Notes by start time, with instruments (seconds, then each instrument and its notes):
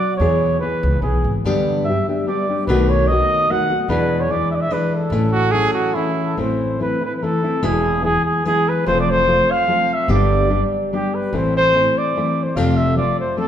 Already playing: nylon-string guitar F#3 B3 D4 F#4, trumpet D5
0.17 upright bass E2, nylon-string guitar E2 B2 E3 B3, trumpet C#5
0.21 nylon-string guitar E4 G#4
0.60 nylon-string guitar E3 B3 E4 G#4, trumpet B4
0.83 upright bass C#2
1.02 upright bass B1, nylon-string guitar E3 B3 E4 G#4, trumpet G#4
1.24 upright bass G#1
1.45 upright bass G2, nylon-string guitar G2 D3 G3 B3 D4 G4
1.85 nylon-string guitar G3 B3 D4, trumpet E5
1.90 nylon-string guitar G4
2.09 nylon-string guitar G3 B3 D4 G4, trumpet E5
2.27 nylon-string guitar G3 B3 D4 G4, trumpet D5
2.49 nylon-string guitar G3 B3 D4 G4
2.67 upright bass B1, nylon-string guitar B2 D#3 A3 B3 F#4, trumpet B4
2.90 trumpet C#5
3.08 nylon-string guitar D#3 A3 B3, trumpet D#5
3.12 nylon-string guitar F#4
3.50 nylon-string guitar D#3 A3 B3 F#4, trumpet F#5
3.70 nylon-string guitar A3 B3 F#4
3.88 upright bass E2, nylon-string guitar E2 B2 E3 G#3 D4 E4, trumpet B4
4.20 trumpet C#5
4.30 nylon-string guitar E3 G#3 D4 E4, trumpet D5
4.51 trumpet E5
4.55 trumpet D5
4.61 trumpet E5
4.70 nylon-string guitar E3 G#3 D4 E4, trumpet B4
4.96 trumpet A4
5.10 upright bass A1, nylon-string guitar A2 E3 A3 C#4 E4
5.32 trumpet F#4
5.51 nylon-string guitar E3 A3 C#4 E4, trumpet G#4
5.73 trumpet F#4
5.95 nylon-string guitar E3 A3 C#4 E4, trumpet E4
6.22 trumpet A4
6.37 upright bass A1, nylon-string guitar A2 E3 A3 C4 E4, trumpet C5
6.79 nylon-string guitar E3 A3 C4 E4, trumpet B4
7.01 nylon-string guitar A3 C4 E4
7.06 trumpet B4
7.16 trumpet B4
7.22 nylon-string guitar E3 A3 C4 E4, trumpet A4
7.44 nylon-string guitar A3 C4 E4
7.63 upright bass E1, nylon-string guitar E2 B2 E3 G#3 B3 E4, trumpet G#4
8.03 nylon-string guitar E3 G#3 B3 E4, trumpet G#4
8.26 trumpet G#4
8.45 nylon-string guitar E3 G#3 B3 E4, trumpet G#4
8.69 trumpet B4
8.86 upright bass F1, nylon-string guitar F2 C3 F3 A3 C4 F4, trumpet C5
9.01 trumpet D5
9.11 trumpet C5
9.27 nylon-string guitar F3 A3 C4 F4
9.51 trumpet F5
9.67 nylon-string guitar F3 A3 C4 F4
9.94 trumpet E5
10.08 upright bass G1, nylon-string guitar G2 D3 G3 B3 D4 G4, trumpet D5
10.49 nylon-string guitar G3 B3 D4 G4
10.93 nylon-string guitar G3 B3 D4 G4, trumpet G4
11.15 trumpet B4
11.33 upright bass A1, nylon-string guitar A2 E3 A3 C4 E4
11.37 trumpet C5
11.57 trumpet C5
11.75 nylon-string guitar E3 A3 C4 E4
11.98 trumpet D5
12.16 nylon-string guitar E3 A3 C4 E4
12.43 trumpet C5
12.56 upright bass F1, nylon-string guitar F2 C3 F3 A3 C4 F4, trumpet F5
12.77 trumpet E5
12.97 nylon-string guitar F3 A3 C4 F4, trumpet D5
13.20 trumpet C5
13.37 nylon-string guitar F3 A3 C4 F4, trumpet A4